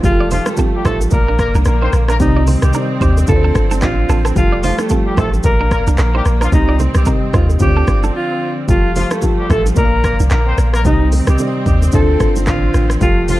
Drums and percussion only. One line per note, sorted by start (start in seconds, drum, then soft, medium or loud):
0.04 kick loud
0.04 low conga medium
0.04 shaker medium
0.31 open hi-hat medium
0.31 high bongo medium
0.31 low conga medium
0.31 shaker medium
0.46 cross-stick loud
0.46 low bongo medium
0.46 shaker medium
0.57 kick medium
0.57 high bongo medium
0.57 shaker medium
0.85 kick loud
0.85 cross-stick loud
0.85 low bongo medium
0.85 shaker soft
1.01 high bongo medium
1.01 shaker medium
1.11 kick loud
1.11 low conga medium
1.11 shaker medium
1.39 kick medium
1.39 cross-stick loud
1.39 shaker soft
1.55 low bongo medium
1.55 shaker medium
1.65 cross-stick medium
1.65 high bongo medium
1.65 shaker medium
1.93 cross-stick medium
1.93 shaker medium
2.08 cross-stick loud
2.08 shaker medium
2.20 kick loud
2.20 low conga medium
2.20 shaker medium
2.47 open hi-hat medium
2.47 high bongo medium
2.47 low conga medium
2.47 shaker medium
2.62 cross-stick loud
2.62 low bongo medium
2.62 shaker medium
2.73 high bongo medium
2.73 shaker medium
3.01 kick medium
3.01 low bongo medium
3.01 shaker soft
3.17 high bongo medium
3.17 shaker medium
3.27 kick loud
3.27 low conga medium
3.27 shaker medium
3.55 kick loud
3.55 cross-stick loud
3.55 shaker soft
3.71 low bongo medium
3.71 shaker medium
3.81 kick loud
3.81 cross-stick medium
3.81 clap medium
3.81 high bongo medium
3.81 shaker medium
4.09 cross-stick medium
4.09 shaker medium
4.25 cross-stick loud
4.25 shaker medium
4.36 kick loud
4.36 low conga medium
4.36 shaker medium
4.63 open hi-hat medium
4.63 high bongo medium
4.63 low conga medium
4.63 shaker medium
4.79 cross-stick loud
4.79 low bongo medium
4.79 shaker medium
4.89 kick medium
4.89 high bongo medium
4.89 shaker medium
5.17 kick loud
5.17 cross-stick loud
5.17 low bongo medium
5.17 shaker soft
5.33 high bongo medium
5.33 shaker medium
5.43 kick loud
5.43 low conga medium
5.43 shaker medium
5.71 kick loud
5.71 cross-stick loud
5.71 shaker soft
5.87 low bongo medium
5.87 shaker medium
5.98 cross-stick medium
5.98 clap medium
5.98 high bongo medium
5.98 shaker medium
6.25 cross-stick medium
6.25 shaker medium
6.41 cross-stick loud
6.41 shaker medium
6.52 kick loud
6.52 low conga medium
6.52 shaker medium
6.79 high bongo medium
6.79 low conga medium
6.79 shaker medium
6.95 cross-stick loud
6.95 low bongo medium
6.95 shaker medium
7.06 kick medium
7.06 high bongo medium
7.06 shaker medium
7.33 kick loud
7.33 cross-stick loud
7.33 low bongo medium
7.33 shaker soft
7.49 high bongo medium
7.49 shaker medium
7.60 kick medium
7.60 low conga medium
7.60 shaker medium
7.88 kick medium
7.88 cross-stick loud
7.88 shaker soft
8.03 low bongo medium
8.03 shaker medium
8.68 kick loud
8.68 low conga medium
8.68 shaker medium
8.96 open hi-hat medium
8.96 high bongo medium
8.96 low conga medium
8.96 shaker medium
9.11 cross-stick loud
9.11 low bongo medium
9.11 shaker medium
9.22 kick medium
9.22 high bongo medium
9.22 shaker medium
9.50 kick loud
9.50 cross-stick loud
9.50 low bongo medium
9.50 shaker medium
9.66 high bongo medium
9.66 shaker medium
9.76 kick medium
9.76 low conga medium
9.76 shaker medium
10.04 kick loud
10.04 cross-stick loud
10.04 shaker soft
10.20 low bongo medium
10.20 shaker medium
10.30 cross-stick medium
10.30 clap medium
10.30 high bongo medium
10.30 shaker medium
10.58 cross-stick medium
10.58 shaker medium
10.74 cross-stick loud
10.74 shaker medium
10.85 kick loud
10.85 low conga medium
10.85 shaker medium
11.12 open hi-hat medium
11.12 high bongo medium
11.12 low conga medium
11.12 shaker medium
11.27 cross-stick loud
11.27 low bongo medium
11.27 shaker medium
11.38 high bongo medium
11.38 shaker medium
11.66 kick loud
11.66 low bongo medium
11.66 shaker soft
11.82 high bongo medium
11.82 shaker medium
11.92 kick medium
11.92 low conga medium
11.92 shaker medium
12.20 kick loud
12.20 cross-stick loud
12.20 shaker medium
12.36 low bongo medium
12.36 shaker medium
12.46 kick medium
12.46 cross-stick medium
12.46 clap medium
12.46 high bongo medium
12.46 shaker medium
12.74 cross-stick medium
12.74 shaker medium
12.90 cross-stick loud
12.90 shaker medium
13.01 kick loud
13.01 low conga medium
13.01 shaker medium
13.28 open hi-hat medium
13.28 high bongo medium
13.28 low conga medium
13.28 shaker medium